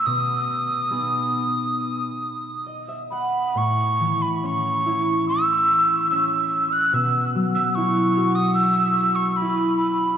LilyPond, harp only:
\new Staff \with { instrumentName = "Harp" } { \time 4/4 \key a \lydian \tempo 4 = 71 << { r2. dis''16 e''16 fis''8 | r1 | r1 | } \\ { b,4 <b dis' gis'>2. | a,8 e8 cis'8 e'4. cis'4 | b,8 fis8 e'8 fis'4. e'4 | } >> }